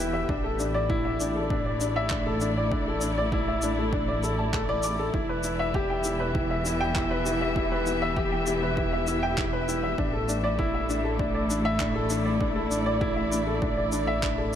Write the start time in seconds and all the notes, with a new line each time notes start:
Already playing: E1 E3 B3 G4 B4 E5 G5
0.00 E4
0.13 E5
0.29 A1 A2 D4, kick
0.44 A4
0.53 E4
0.59 D4 D5, shaker
0.71 A3 D5
0.90 E4, kick
1.05 E5
1.20 D4, shaker
1.36 A4
1.50 D4, kick
1.66 D5
1.81 D4, shaker
1.96 E5
2.10 D4, kick, clap
2.26 A4
2.41 D4, shaker
2.57 D5
2.72 D4, kick
2.88 A4
3.01 D4, shaker
3.18 D5
3.32 E4, kick
3.48 E5
3.62 D4, shaker
3.78 A4
3.93 D4, kick
4.08 D5
4.23 A4, shaker
4.39 A5
4.53 A4, kick, clap
4.69 D5
4.83 D6, shaker
4.99 A4
5.14 E1 E3 E4, kick
5.29 B4 E5
5.43 E4, shaker
5.56 B3 E5
5.74 G4, kick
5.90 G5
6.04 E4, shaker
6.09 G4
6.20 B4
6.35 E4, kick
6.50 E5
6.65 E4, shaker
6.81 G5
6.95 E4, kick, clap
7.11 B4
7.26 E4, shaker
7.41 E5
7.56 E4, kick
7.72 B4
7.86 E4, shaker
8.02 E5
8.17 G4, kick
8.32 G5
8.47 E4, shaker
8.63 B4
8.77 E4, kick
8.93 E5
9.07 E4, shaker
9.23 G5
9.38 E4, kick, clap
9.53 B4
9.68 E4, shaker
9.83 E5
9.98 A1 A2 D4, kick
10.06 A3
10.13 A4
10.29 D4, shaker
10.42 E4 D5
10.59 E4, kick
10.74 E5
10.89 D4 D5, shaker
11.04 A4
11.19 D4, kick
11.35 D5
11.50 D4, shaker
11.65 E5
11.80 D4, kick, clap
11.96 A4
12.10 D4, shaker
12.26 D5
12.40 D4, kick
12.56 A4
12.71 D4, shaker
12.86 D5
13.01 E4, kick
13.16 E5
13.31 D4, shaker
13.47 A4
13.62 D4, kick
13.77 D5
13.92 D4, shaker
14.07 E5
14.22 D4, kick, clap
14.38 A4